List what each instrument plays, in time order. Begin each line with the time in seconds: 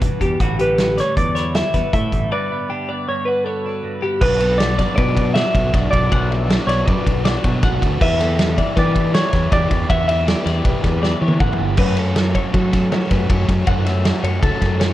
Already playing: clean electric guitar B2 G3 D4 G4 B4
0.02 fingered electric bass E1, clean electric guitar E2, kick, closed hi-hat
0.21 fingered electric bass E2, clean electric guitar G3 G4, kick, closed hi-hat
0.40 fingered electric bass A1, clean electric guitar A2 D3 G3 B3 E4 F#4, kick, closed hi-hat
0.59 clean electric guitar G3 G4 B4, closed hi-hat
0.78 clean electric guitar B3, snare, closed hi-hat
0.97 clean electric guitar G3 C#5 D5, snare, closed hi-hat
1.16 clean electric guitar E2 D5, fingered electric bass E2, kick, closed hi-hat
1.35 clean electric guitar E4 C#5, snare, closed hi-hat
1.55 clean electric guitar G3 E5, snare, closed hi-hat
1.74 fingered electric bass E2, clean electric guitar B3 B4, kick, snare, closed hi-hat
1.93 fingered electric bass A2, clean electric guitar A2 A4 E5, kick, closed hi-hat
2.12 fingered electric bass A1, clean electric guitar G3, kick, closed hi-hat
2.32 clean electric guitar G2 B4 D5
2.52 clean electric guitar B3
2.70 clean electric guitar D4 G4
2.89 clean electric guitar B3 D5
3.08 clean electric guitar G2 C#5
3.25 clean electric guitar F#4 B4
3.44 clean electric guitar B3 A4 C#5
3.65 clean electric guitar D4 B4
3.83 clean electric guitar G2
4.02 clean electric guitar B3 G4
4.21 fingered electric bass B1, overdriven electric guitar B2 F#3 B3 D4 F#4, clean electric guitar B4, kick, crash
4.40 overdriven electric guitar B3 D4 F#4, clean electric guitar A4, ride
4.58 overdriven electric guitar F#3 B3 D4 F#4, clean electric guitar D5, snare, ride
4.79 clean electric guitar D5, kick, snare, ride
4.96 overdriven electric guitar B2 F#3 B3 D4 F#4, fingered electric bass B2, clean electric guitar B4 D5, kick, ride
5.16 overdriven electric guitar B3 D4 F#4, kick, ride
5.34 overdriven electric guitar F#3 B3 D4 F#4, clean electric guitar D5 E5, snare, ride
5.54 fingered electric bass B1, overdriven electric guitar B3 D4 F#4, clean electric guitar C#5, kick, ride
5.73 fingered electric bass B1, overdriven electric guitar B2 F#3 B3 D4 F#4, clean electric guitar D5, kick, snare, ride
5.91 fingered electric bass B1, overdriven electric guitar B3 D4 F#4, clean electric guitar D5, kick, ride
6.10 fingered electric bass B1, overdriven electric guitar B2 F#3 B3 D4 F#4, clean electric guitar F#5, kick, ride
6.30 overdriven electric guitar B3 D4 F#4, clean electric guitar E5, snare, ride
6.48 overdriven electric guitar F#3 B3 D4 F#4, snare, ride
6.67 fingered electric bass B1, clean electric guitar C#5 D5, snare, ride
6.86 fingered electric bass F#2, overdriven electric guitar B2 F#3 B3 D4 F#4, clean electric guitar B4 D5, kick, ride
7.06 fingered electric bass B1, overdriven electric guitar B3 D4 F#4, kick, ride
7.24 overdriven electric guitar F#3 B3 D4 F#4, clean electric guitar D5, snare, ride
7.44 fingered electric bass B2, overdriven electric guitar B3 D4 F#4, clean electric guitar C#5, kick, ride
7.62 fingered electric bass B1, overdriven electric guitar B2 F#3 B3 D4 F#4, clean electric guitar F#5, kick, snare, ride
7.82 fingered electric bass D2, overdriven electric guitar B3 D4 F#4, kick, ride
8.01 fingered electric bass E2, overdriven electric guitar E3 B3 E4 G4, clean electric guitar B4 E5, kick, crash
8.20 overdriven electric guitar B3 E4 G4, clean electric guitar A4, snare, ride
8.37 overdriven electric guitar E3 B3 E4 G4, snare, ride
8.58 clean electric guitar D5, kick, ride
8.76 overdriven electric guitar E3 B3 E4 G4, fingered electric bass E3, clean electric guitar B4 D5, kick, snare, ride
8.94 overdriven electric guitar B3 E4 G4, kick, ride
9.13 overdriven electric guitar E3 B3 E4 G4, clean electric guitar C#5 D5, snare, ride
9.33 fingered electric bass E2, overdriven electric guitar B3 E4 G4, clean electric guitar C#5, kick, snare, ride
9.51 fingered electric bass E2, overdriven electric guitar E3 B3 E4 G4, clean electric guitar D5, kick, snare, ride
9.71 fingered electric bass E2, overdriven electric guitar B3 E4 G4, kick, ride
9.88 fingered electric bass E2, overdriven electric guitar E3 B3 E4 G4, clean electric guitar E5 F#5, kick, ride
10.08 overdriven electric guitar B3 E4 G4, clean electric guitar E5, ride
10.26 overdriven electric guitar E3 B3 E4 G4, clean electric guitar D5, snare, ride
10.46 fingered electric bass E2, clean electric guitar D5, snare, ride
10.63 fingered electric bass B1, overdriven electric guitar E3 B3 E4 G4, clean electric guitar B4, kick, ride
10.83 fingered electric bass E2, overdriven electric guitar B3 E4 G4, kick, snare, ride
11.00 overdriven electric guitar E3 B3 E4 G4, clean electric guitar D5, snare
11.21 fingered electric bass E3, overdriven electric guitar B3 E4 G4, clean electric guitar C#5
11.28 high tom
11.39 fingered electric bass A1, overdriven electric guitar E3 B3 E4 G4, clean electric guitar F#5, kick, mid tom
11.53 mid tom
11.58 fingered electric bass G1, overdriven electric guitar B3 E4 G4
11.77 fingered electric bass F#2, overdriven electric guitar F#3 A3 C#4 F#4, clean electric guitar B4, kick, crash, splash
11.97 overdriven electric guitar A3 C#4 F#4, clean electric guitar A4, ride
12.15 overdriven electric guitar F#3 A3 C#4 F#4, snare, ride
12.35 clean electric guitar C#5, kick, ride
12.52 overdriven electric guitar F#3 A3 C#4 F#4, fingered electric bass F#3, clean electric guitar A4, kick, ride
12.71 overdriven electric guitar A3 C#4 F#4, kick, snare, ride
12.91 overdriven electric guitar F#3 A3 C#4 F#4, clean electric guitar C#5, snare, ride
13.10 fingered electric bass F#2, overdriven electric guitar A3 C#4 F#4, clean electric guitar B4, kick, snare, ride
13.28 fingered electric bass F#2, overdriven electric guitar F#3 A3 C#4 F#4, clean electric guitar C#5, kick, ride
13.47 fingered electric bass F#2, overdriven electric guitar A3 C#4 F#4, kick, snare, ride
13.66 fingered electric bass F#2, overdriven electric guitar F#3 A3 C#4 F#4, clean electric guitar F#5, kick, ride
13.85 overdriven electric guitar A3 C#4 F#4, clean electric guitar E5, snare, ride
14.04 overdriven electric guitar F#3 A3 C#4 F#4, snare, ride
14.23 fingered electric bass F#2, clean electric guitar C#5, ride
14.42 fingered electric bass C#2, overdriven electric guitar F#3 A3 C#4 F#4, clean electric guitar A4, kick, ride
14.61 fingered electric bass F#2, overdriven electric guitar A3 C#4 F#4, kick, snare, ride
14.79 overdriven electric guitar F#3 A3 C#4 F#4, clean electric guitar C#5, snare, ride